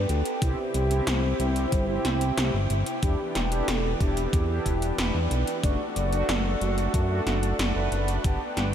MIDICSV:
0, 0, Header, 1, 6, 480
1, 0, Start_track
1, 0, Key_signature, 1, "minor"
1, 0, Tempo, 652174
1, 308, Time_signature, 4, 2, 24, 8
1, 6437, End_track
2, 0, Start_track
2, 0, Title_t, "Soft synth lead"
2, 0, Program_c, 0, 80
2, 0, Note_on_c, 0, 71, 111
2, 70, Note_on_c, 0, 69, 97
2, 81, Note_off_c, 0, 71, 0
2, 309, Note_on_c, 0, 67, 101
2, 320, Note_off_c, 0, 69, 0
2, 789, Note_on_c, 0, 72, 111
2, 800, Note_off_c, 0, 67, 0
2, 1749, Note_off_c, 0, 72, 0
2, 2230, Note_on_c, 0, 67, 93
2, 2470, Note_on_c, 0, 69, 98
2, 2481, Note_off_c, 0, 67, 0
2, 2947, Note_on_c, 0, 67, 98
2, 2958, Note_off_c, 0, 69, 0
2, 3423, Note_off_c, 0, 67, 0
2, 3427, Note_on_c, 0, 67, 93
2, 3668, Note_on_c, 0, 71, 109
2, 3679, Note_off_c, 0, 67, 0
2, 4147, Note_on_c, 0, 74, 117
2, 4158, Note_off_c, 0, 71, 0
2, 5108, Note_off_c, 0, 74, 0
2, 6437, End_track
3, 0, Start_track
3, 0, Title_t, "Analog polysynth"
3, 0, Program_c, 1, 90
3, 309, Note_on_c, 1, 60, 78
3, 309, Note_on_c, 1, 64, 72
3, 309, Note_on_c, 1, 67, 88
3, 429, Note_off_c, 1, 60, 0
3, 429, Note_off_c, 1, 64, 0
3, 429, Note_off_c, 1, 67, 0
3, 669, Note_on_c, 1, 60, 97
3, 669, Note_on_c, 1, 64, 89
3, 669, Note_on_c, 1, 67, 105
3, 789, Note_off_c, 1, 60, 0
3, 789, Note_off_c, 1, 64, 0
3, 789, Note_off_c, 1, 67, 0
3, 1028, Note_on_c, 1, 60, 86
3, 1028, Note_on_c, 1, 64, 80
3, 1028, Note_on_c, 1, 67, 93
3, 1359, Note_off_c, 1, 60, 0
3, 1360, Note_off_c, 1, 64, 0
3, 1360, Note_off_c, 1, 67, 0
3, 1387, Note_on_c, 1, 64, 82
3, 1388, Note_on_c, 1, 60, 91
3, 1388, Note_on_c, 1, 67, 98
3, 1719, Note_off_c, 1, 60, 0
3, 1719, Note_off_c, 1, 64, 0
3, 1719, Note_off_c, 1, 67, 0
3, 1749, Note_on_c, 1, 60, 84
3, 1749, Note_on_c, 1, 64, 77
3, 1749, Note_on_c, 1, 67, 91
3, 1869, Note_off_c, 1, 60, 0
3, 1869, Note_off_c, 1, 64, 0
3, 1869, Note_off_c, 1, 67, 0
3, 2229, Note_on_c, 1, 62, 81
3, 2229, Note_on_c, 1, 64, 73
3, 2229, Note_on_c, 1, 67, 86
3, 2349, Note_off_c, 1, 62, 0
3, 2349, Note_off_c, 1, 64, 0
3, 2349, Note_off_c, 1, 67, 0
3, 2588, Note_on_c, 1, 62, 94
3, 2588, Note_on_c, 1, 64, 89
3, 2588, Note_on_c, 1, 67, 108
3, 2709, Note_off_c, 1, 62, 0
3, 2709, Note_off_c, 1, 64, 0
3, 2709, Note_off_c, 1, 67, 0
3, 2948, Note_on_c, 1, 64, 77
3, 2949, Note_on_c, 1, 62, 86
3, 2949, Note_on_c, 1, 67, 93
3, 3280, Note_off_c, 1, 62, 0
3, 3280, Note_off_c, 1, 64, 0
3, 3280, Note_off_c, 1, 67, 0
3, 3308, Note_on_c, 1, 62, 89
3, 3308, Note_on_c, 1, 64, 82
3, 3308, Note_on_c, 1, 67, 99
3, 3639, Note_off_c, 1, 67, 0
3, 3640, Note_off_c, 1, 62, 0
3, 3640, Note_off_c, 1, 64, 0
3, 3669, Note_on_c, 1, 62, 87
3, 3669, Note_on_c, 1, 64, 76
3, 3669, Note_on_c, 1, 67, 94
3, 3789, Note_off_c, 1, 64, 0
3, 3789, Note_off_c, 1, 67, 0
3, 3790, Note_off_c, 1, 62, 0
3, 4148, Note_on_c, 1, 57, 79
3, 4148, Note_on_c, 1, 62, 70
3, 4148, Note_on_c, 1, 66, 87
3, 4269, Note_off_c, 1, 57, 0
3, 4269, Note_off_c, 1, 62, 0
3, 4269, Note_off_c, 1, 66, 0
3, 4508, Note_on_c, 1, 66, 107
3, 4509, Note_on_c, 1, 57, 99
3, 4509, Note_on_c, 1, 62, 91
3, 4629, Note_off_c, 1, 57, 0
3, 4629, Note_off_c, 1, 62, 0
3, 4629, Note_off_c, 1, 66, 0
3, 4870, Note_on_c, 1, 57, 85
3, 4870, Note_on_c, 1, 62, 79
3, 4870, Note_on_c, 1, 66, 93
3, 5200, Note_off_c, 1, 57, 0
3, 5200, Note_off_c, 1, 62, 0
3, 5201, Note_off_c, 1, 66, 0
3, 5228, Note_on_c, 1, 66, 96
3, 5229, Note_on_c, 1, 57, 88
3, 5229, Note_on_c, 1, 62, 84
3, 5325, Note_off_c, 1, 57, 0
3, 5325, Note_off_c, 1, 62, 0
3, 5325, Note_off_c, 1, 66, 0
3, 5349, Note_on_c, 1, 57, 76
3, 5349, Note_on_c, 1, 62, 69
3, 5349, Note_on_c, 1, 66, 80
3, 5542, Note_off_c, 1, 57, 0
3, 5542, Note_off_c, 1, 62, 0
3, 5542, Note_off_c, 1, 66, 0
3, 5708, Note_on_c, 1, 57, 88
3, 5708, Note_on_c, 1, 62, 76
3, 5708, Note_on_c, 1, 71, 92
3, 6039, Note_off_c, 1, 62, 0
3, 6039, Note_off_c, 1, 71, 0
3, 6040, Note_off_c, 1, 57, 0
3, 6068, Note_on_c, 1, 62, 73
3, 6068, Note_on_c, 1, 67, 87
3, 6069, Note_on_c, 1, 59, 80
3, 6189, Note_off_c, 1, 59, 0
3, 6189, Note_off_c, 1, 62, 0
3, 6189, Note_off_c, 1, 67, 0
3, 6437, End_track
4, 0, Start_track
4, 0, Title_t, "Analog synth pad"
4, 0, Program_c, 2, 89
4, 0, Note_on_c, 2, 59, 78
4, 0, Note_on_c, 2, 62, 72
4, 0, Note_on_c, 2, 67, 86
4, 290, Note_off_c, 2, 62, 0
4, 291, Note_off_c, 2, 59, 0
4, 309, Note_on_c, 2, 64, 69
4, 310, Note_on_c, 2, 48, 78
4, 310, Note_on_c, 2, 60, 73
4, 2210, Note_off_c, 2, 48, 0
4, 2210, Note_off_c, 2, 60, 0
4, 2210, Note_off_c, 2, 64, 0
4, 2228, Note_on_c, 2, 52, 77
4, 2229, Note_on_c, 2, 59, 69
4, 2229, Note_on_c, 2, 62, 73
4, 4120, Note_off_c, 2, 67, 0
4, 4129, Note_off_c, 2, 52, 0
4, 4129, Note_off_c, 2, 59, 0
4, 4148, Note_on_c, 2, 57, 81
4, 4148, Note_on_c, 2, 66, 88
4, 6049, Note_off_c, 2, 57, 0
4, 6049, Note_off_c, 2, 66, 0
4, 6066, Note_on_c, 2, 67, 85
4, 6067, Note_on_c, 2, 59, 80
4, 6437, Note_off_c, 2, 59, 0
4, 6437, Note_off_c, 2, 62, 0
4, 6437, Note_off_c, 2, 67, 0
4, 6437, End_track
5, 0, Start_track
5, 0, Title_t, "Analog synth bass"
5, 0, Program_c, 3, 38
5, 68, Note_on_c, 3, 38, 87
5, 167, Note_off_c, 3, 38, 0
5, 308, Note_on_c, 3, 36, 98
5, 407, Note_off_c, 3, 36, 0
5, 548, Note_on_c, 3, 36, 90
5, 746, Note_off_c, 3, 36, 0
5, 788, Note_on_c, 3, 36, 98
5, 986, Note_off_c, 3, 36, 0
5, 1028, Note_on_c, 3, 36, 98
5, 1226, Note_off_c, 3, 36, 0
5, 1268, Note_on_c, 3, 31, 93
5, 1466, Note_off_c, 3, 31, 0
5, 1509, Note_on_c, 3, 36, 80
5, 1707, Note_off_c, 3, 36, 0
5, 1749, Note_on_c, 3, 36, 90
5, 1848, Note_off_c, 3, 36, 0
5, 1870, Note_on_c, 3, 31, 81
5, 1968, Note_off_c, 3, 31, 0
5, 1990, Note_on_c, 3, 31, 86
5, 2088, Note_off_c, 3, 31, 0
5, 2228, Note_on_c, 3, 28, 99
5, 2327, Note_off_c, 3, 28, 0
5, 2469, Note_on_c, 3, 28, 87
5, 2667, Note_off_c, 3, 28, 0
5, 2709, Note_on_c, 3, 28, 102
5, 2907, Note_off_c, 3, 28, 0
5, 2948, Note_on_c, 3, 28, 99
5, 3146, Note_off_c, 3, 28, 0
5, 3187, Note_on_c, 3, 40, 92
5, 3386, Note_off_c, 3, 40, 0
5, 3428, Note_on_c, 3, 28, 80
5, 3626, Note_off_c, 3, 28, 0
5, 3667, Note_on_c, 3, 28, 90
5, 3767, Note_off_c, 3, 28, 0
5, 3788, Note_on_c, 3, 40, 79
5, 3887, Note_off_c, 3, 40, 0
5, 3908, Note_on_c, 3, 35, 86
5, 4007, Note_off_c, 3, 35, 0
5, 4147, Note_on_c, 3, 30, 97
5, 4247, Note_off_c, 3, 30, 0
5, 4389, Note_on_c, 3, 30, 89
5, 4586, Note_off_c, 3, 30, 0
5, 4628, Note_on_c, 3, 30, 99
5, 4826, Note_off_c, 3, 30, 0
5, 4867, Note_on_c, 3, 30, 100
5, 5066, Note_off_c, 3, 30, 0
5, 5108, Note_on_c, 3, 42, 97
5, 5306, Note_off_c, 3, 42, 0
5, 5347, Note_on_c, 3, 30, 82
5, 5546, Note_off_c, 3, 30, 0
5, 5588, Note_on_c, 3, 30, 102
5, 5687, Note_off_c, 3, 30, 0
5, 5707, Note_on_c, 3, 30, 82
5, 5807, Note_off_c, 3, 30, 0
5, 5828, Note_on_c, 3, 30, 81
5, 6026, Note_off_c, 3, 30, 0
5, 6068, Note_on_c, 3, 31, 97
5, 6167, Note_off_c, 3, 31, 0
5, 6309, Note_on_c, 3, 31, 89
5, 6437, Note_off_c, 3, 31, 0
5, 6437, End_track
6, 0, Start_track
6, 0, Title_t, "Drums"
6, 68, Note_on_c, 9, 42, 66
6, 141, Note_off_c, 9, 42, 0
6, 188, Note_on_c, 9, 42, 67
6, 261, Note_off_c, 9, 42, 0
6, 308, Note_on_c, 9, 36, 118
6, 308, Note_on_c, 9, 42, 96
6, 381, Note_off_c, 9, 42, 0
6, 382, Note_off_c, 9, 36, 0
6, 547, Note_on_c, 9, 42, 67
6, 621, Note_off_c, 9, 42, 0
6, 668, Note_on_c, 9, 42, 68
6, 742, Note_off_c, 9, 42, 0
6, 788, Note_on_c, 9, 38, 118
6, 788, Note_on_c, 9, 42, 90
6, 861, Note_off_c, 9, 38, 0
6, 861, Note_off_c, 9, 42, 0
6, 1029, Note_on_c, 9, 42, 66
6, 1102, Note_off_c, 9, 42, 0
6, 1148, Note_on_c, 9, 42, 65
6, 1221, Note_off_c, 9, 42, 0
6, 1268, Note_on_c, 9, 36, 116
6, 1268, Note_on_c, 9, 42, 91
6, 1342, Note_off_c, 9, 36, 0
6, 1342, Note_off_c, 9, 42, 0
6, 1507, Note_on_c, 9, 38, 59
6, 1507, Note_on_c, 9, 42, 64
6, 1581, Note_off_c, 9, 38, 0
6, 1581, Note_off_c, 9, 42, 0
6, 1628, Note_on_c, 9, 42, 66
6, 1702, Note_off_c, 9, 42, 0
6, 1748, Note_on_c, 9, 38, 116
6, 1748, Note_on_c, 9, 42, 96
6, 1822, Note_off_c, 9, 38, 0
6, 1822, Note_off_c, 9, 42, 0
6, 1988, Note_on_c, 9, 42, 66
6, 2061, Note_off_c, 9, 42, 0
6, 2108, Note_on_c, 9, 42, 67
6, 2182, Note_off_c, 9, 42, 0
6, 2227, Note_on_c, 9, 42, 93
6, 2228, Note_on_c, 9, 36, 123
6, 2301, Note_off_c, 9, 42, 0
6, 2302, Note_off_c, 9, 36, 0
6, 2468, Note_on_c, 9, 38, 64
6, 2468, Note_on_c, 9, 42, 66
6, 2541, Note_off_c, 9, 38, 0
6, 2541, Note_off_c, 9, 42, 0
6, 2589, Note_on_c, 9, 42, 65
6, 2663, Note_off_c, 9, 42, 0
6, 2709, Note_on_c, 9, 38, 118
6, 2709, Note_on_c, 9, 42, 90
6, 2782, Note_off_c, 9, 38, 0
6, 2782, Note_off_c, 9, 42, 0
6, 2948, Note_on_c, 9, 36, 103
6, 2949, Note_on_c, 9, 42, 63
6, 3022, Note_off_c, 9, 36, 0
6, 3023, Note_off_c, 9, 42, 0
6, 3069, Note_on_c, 9, 42, 62
6, 3143, Note_off_c, 9, 42, 0
6, 3188, Note_on_c, 9, 36, 118
6, 3190, Note_on_c, 9, 42, 89
6, 3261, Note_off_c, 9, 36, 0
6, 3263, Note_off_c, 9, 42, 0
6, 3428, Note_on_c, 9, 36, 60
6, 3429, Note_on_c, 9, 42, 66
6, 3501, Note_off_c, 9, 36, 0
6, 3503, Note_off_c, 9, 42, 0
6, 3549, Note_on_c, 9, 42, 66
6, 3622, Note_off_c, 9, 42, 0
6, 3668, Note_on_c, 9, 38, 123
6, 3668, Note_on_c, 9, 42, 90
6, 3742, Note_off_c, 9, 38, 0
6, 3742, Note_off_c, 9, 42, 0
6, 3909, Note_on_c, 9, 42, 65
6, 3982, Note_off_c, 9, 42, 0
6, 4029, Note_on_c, 9, 42, 67
6, 4103, Note_off_c, 9, 42, 0
6, 4147, Note_on_c, 9, 36, 119
6, 4148, Note_on_c, 9, 42, 88
6, 4221, Note_off_c, 9, 36, 0
6, 4222, Note_off_c, 9, 42, 0
6, 4388, Note_on_c, 9, 42, 67
6, 4462, Note_off_c, 9, 42, 0
6, 4508, Note_on_c, 9, 42, 63
6, 4582, Note_off_c, 9, 42, 0
6, 4628, Note_on_c, 9, 38, 116
6, 4628, Note_on_c, 9, 42, 83
6, 4702, Note_off_c, 9, 38, 0
6, 4702, Note_off_c, 9, 42, 0
6, 4868, Note_on_c, 9, 42, 61
6, 4942, Note_off_c, 9, 42, 0
6, 4988, Note_on_c, 9, 42, 60
6, 5062, Note_off_c, 9, 42, 0
6, 5108, Note_on_c, 9, 36, 118
6, 5108, Note_on_c, 9, 42, 85
6, 5181, Note_off_c, 9, 36, 0
6, 5182, Note_off_c, 9, 42, 0
6, 5348, Note_on_c, 9, 38, 60
6, 5348, Note_on_c, 9, 42, 61
6, 5422, Note_off_c, 9, 38, 0
6, 5422, Note_off_c, 9, 42, 0
6, 5468, Note_on_c, 9, 42, 63
6, 5542, Note_off_c, 9, 42, 0
6, 5589, Note_on_c, 9, 38, 116
6, 5589, Note_on_c, 9, 42, 90
6, 5662, Note_off_c, 9, 38, 0
6, 5662, Note_off_c, 9, 42, 0
6, 5829, Note_on_c, 9, 42, 63
6, 5902, Note_off_c, 9, 42, 0
6, 5948, Note_on_c, 9, 42, 64
6, 6022, Note_off_c, 9, 42, 0
6, 6068, Note_on_c, 9, 36, 116
6, 6068, Note_on_c, 9, 42, 86
6, 6141, Note_off_c, 9, 36, 0
6, 6141, Note_off_c, 9, 42, 0
6, 6308, Note_on_c, 9, 38, 61
6, 6308, Note_on_c, 9, 42, 64
6, 6381, Note_off_c, 9, 38, 0
6, 6381, Note_off_c, 9, 42, 0
6, 6437, End_track
0, 0, End_of_file